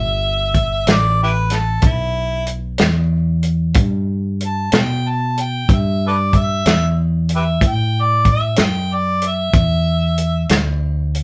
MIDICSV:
0, 0, Header, 1, 4, 480
1, 0, Start_track
1, 0, Key_signature, 1, "minor"
1, 0, Tempo, 641026
1, 2825, Time_signature, 12, 3, 24, 8
1, 8411, End_track
2, 0, Start_track
2, 0, Title_t, "Harmonica"
2, 0, Program_c, 0, 22
2, 0, Note_on_c, 0, 76, 88
2, 692, Note_on_c, 0, 74, 73
2, 703, Note_off_c, 0, 76, 0
2, 910, Note_off_c, 0, 74, 0
2, 923, Note_on_c, 0, 64, 60
2, 923, Note_on_c, 0, 67, 60
2, 923, Note_on_c, 0, 71, 85
2, 982, Note_off_c, 0, 67, 0
2, 984, Note_off_c, 0, 64, 0
2, 1154, Note_on_c, 0, 69, 70
2, 1165, Note_off_c, 0, 71, 0
2, 1394, Note_on_c, 0, 64, 82
2, 1405, Note_off_c, 0, 69, 0
2, 1855, Note_off_c, 0, 64, 0
2, 3339, Note_on_c, 0, 81, 67
2, 3576, Note_on_c, 0, 79, 75
2, 3587, Note_off_c, 0, 81, 0
2, 3810, Note_on_c, 0, 81, 86
2, 3822, Note_off_c, 0, 79, 0
2, 4056, Note_on_c, 0, 79, 75
2, 4067, Note_off_c, 0, 81, 0
2, 4311, Note_on_c, 0, 76, 75
2, 4322, Note_off_c, 0, 79, 0
2, 4522, Note_off_c, 0, 76, 0
2, 4548, Note_on_c, 0, 69, 55
2, 4548, Note_on_c, 0, 71, 55
2, 4548, Note_on_c, 0, 74, 78
2, 4601, Note_off_c, 0, 69, 0
2, 4613, Note_off_c, 0, 71, 0
2, 4767, Note_on_c, 0, 76, 76
2, 4778, Note_off_c, 0, 74, 0
2, 5222, Note_off_c, 0, 76, 0
2, 5509, Note_on_c, 0, 67, 52
2, 5509, Note_on_c, 0, 71, 52
2, 5509, Note_on_c, 0, 76, 74
2, 5563, Note_off_c, 0, 67, 0
2, 5572, Note_off_c, 0, 71, 0
2, 5744, Note_on_c, 0, 79, 74
2, 5755, Note_off_c, 0, 76, 0
2, 6002, Note_on_c, 0, 74, 79
2, 6013, Note_off_c, 0, 79, 0
2, 6207, Note_off_c, 0, 74, 0
2, 6223, Note_on_c, 0, 76, 84
2, 6451, Note_on_c, 0, 79, 75
2, 6462, Note_off_c, 0, 76, 0
2, 6692, Note_on_c, 0, 74, 79
2, 6704, Note_off_c, 0, 79, 0
2, 6939, Note_on_c, 0, 76, 89
2, 6950, Note_off_c, 0, 74, 0
2, 7852, Note_off_c, 0, 76, 0
2, 8411, End_track
3, 0, Start_track
3, 0, Title_t, "Fingered electric bass"
3, 0, Program_c, 1, 33
3, 0, Note_on_c, 1, 31, 76
3, 635, Note_off_c, 1, 31, 0
3, 651, Note_on_c, 1, 33, 83
3, 1356, Note_off_c, 1, 33, 0
3, 1370, Note_on_c, 1, 35, 82
3, 2076, Note_off_c, 1, 35, 0
3, 2099, Note_on_c, 1, 40, 88
3, 2801, Note_off_c, 1, 40, 0
3, 2813, Note_on_c, 1, 43, 69
3, 3518, Note_off_c, 1, 43, 0
3, 3542, Note_on_c, 1, 47, 83
3, 4242, Note_off_c, 1, 47, 0
3, 4258, Note_on_c, 1, 43, 70
3, 4960, Note_off_c, 1, 43, 0
3, 4985, Note_on_c, 1, 40, 83
3, 5683, Note_off_c, 1, 40, 0
3, 5703, Note_on_c, 1, 45, 67
3, 6402, Note_off_c, 1, 45, 0
3, 6432, Note_on_c, 1, 42, 83
3, 7126, Note_off_c, 1, 42, 0
3, 7142, Note_on_c, 1, 40, 68
3, 7840, Note_off_c, 1, 40, 0
3, 7861, Note_on_c, 1, 38, 81
3, 8411, Note_off_c, 1, 38, 0
3, 8411, End_track
4, 0, Start_track
4, 0, Title_t, "Drums"
4, 407, Note_on_c, 9, 42, 52
4, 408, Note_on_c, 9, 36, 59
4, 482, Note_off_c, 9, 42, 0
4, 483, Note_off_c, 9, 36, 0
4, 650, Note_on_c, 9, 42, 76
4, 663, Note_on_c, 9, 38, 96
4, 725, Note_off_c, 9, 42, 0
4, 738, Note_off_c, 9, 38, 0
4, 1123, Note_on_c, 9, 42, 55
4, 1136, Note_on_c, 9, 38, 27
4, 1198, Note_off_c, 9, 42, 0
4, 1210, Note_off_c, 9, 38, 0
4, 1361, Note_on_c, 9, 42, 70
4, 1368, Note_on_c, 9, 36, 86
4, 1436, Note_off_c, 9, 42, 0
4, 1443, Note_off_c, 9, 36, 0
4, 1846, Note_on_c, 9, 42, 51
4, 1921, Note_off_c, 9, 42, 0
4, 2082, Note_on_c, 9, 42, 76
4, 2094, Note_on_c, 9, 38, 90
4, 2157, Note_off_c, 9, 42, 0
4, 2169, Note_off_c, 9, 38, 0
4, 2566, Note_on_c, 9, 42, 42
4, 2641, Note_off_c, 9, 42, 0
4, 2803, Note_on_c, 9, 42, 69
4, 2811, Note_on_c, 9, 36, 95
4, 2878, Note_off_c, 9, 42, 0
4, 2886, Note_off_c, 9, 36, 0
4, 3298, Note_on_c, 9, 42, 47
4, 3373, Note_off_c, 9, 42, 0
4, 3533, Note_on_c, 9, 42, 70
4, 3546, Note_on_c, 9, 38, 106
4, 3608, Note_off_c, 9, 42, 0
4, 3621, Note_off_c, 9, 38, 0
4, 4025, Note_on_c, 9, 42, 49
4, 4100, Note_off_c, 9, 42, 0
4, 4260, Note_on_c, 9, 36, 92
4, 4262, Note_on_c, 9, 42, 66
4, 4335, Note_off_c, 9, 36, 0
4, 4337, Note_off_c, 9, 42, 0
4, 4742, Note_on_c, 9, 36, 65
4, 4743, Note_on_c, 9, 42, 53
4, 4817, Note_off_c, 9, 36, 0
4, 4818, Note_off_c, 9, 42, 0
4, 4984, Note_on_c, 9, 42, 80
4, 4997, Note_on_c, 9, 38, 96
4, 5059, Note_off_c, 9, 42, 0
4, 5072, Note_off_c, 9, 38, 0
4, 5458, Note_on_c, 9, 42, 48
4, 5533, Note_off_c, 9, 42, 0
4, 5701, Note_on_c, 9, 36, 80
4, 5703, Note_on_c, 9, 42, 69
4, 5776, Note_off_c, 9, 36, 0
4, 5778, Note_off_c, 9, 42, 0
4, 6177, Note_on_c, 9, 42, 51
4, 6179, Note_on_c, 9, 36, 64
4, 6252, Note_off_c, 9, 42, 0
4, 6254, Note_off_c, 9, 36, 0
4, 6412, Note_on_c, 9, 42, 88
4, 6424, Note_on_c, 9, 38, 104
4, 6487, Note_off_c, 9, 42, 0
4, 6499, Note_off_c, 9, 38, 0
4, 6901, Note_on_c, 9, 42, 53
4, 6976, Note_off_c, 9, 42, 0
4, 7138, Note_on_c, 9, 42, 67
4, 7140, Note_on_c, 9, 36, 93
4, 7213, Note_off_c, 9, 42, 0
4, 7215, Note_off_c, 9, 36, 0
4, 7620, Note_on_c, 9, 42, 49
4, 7695, Note_off_c, 9, 42, 0
4, 7857, Note_on_c, 9, 42, 75
4, 7870, Note_on_c, 9, 38, 92
4, 7932, Note_off_c, 9, 42, 0
4, 7945, Note_off_c, 9, 38, 0
4, 8346, Note_on_c, 9, 42, 45
4, 8411, Note_off_c, 9, 42, 0
4, 8411, End_track
0, 0, End_of_file